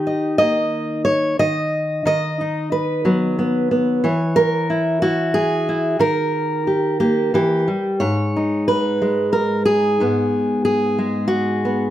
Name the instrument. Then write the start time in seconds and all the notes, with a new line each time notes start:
steel-string acoustic guitar
Already playing: D#3 D#4 G4
0.07 D#5
0.38 A#3 D#5
1.05 C#5
1.39 D#3 D#5
2.05 D#3 D#5
2.41 D#4
2.72 B4
3.05 F#3 B3
3.39 B3
3.71 B3
4.04 E3 C#5
4.36 A#4
4.70 E4
5.02 E4 F#4
5.34 G#4
5.69 E4
5.99 D#3 A#4
6.67 G4
7.00 A#3 G4
7.34 E3 G4
7.68 G3
8.00 G#2 C#5
8.36 D#4
8.68 B4
9.02 G#3
9.33 A#4
9.65 G#4
10.00 G#2 B3
10.65 G#4
10.99 G#3
11.28 F#4
11.65 B3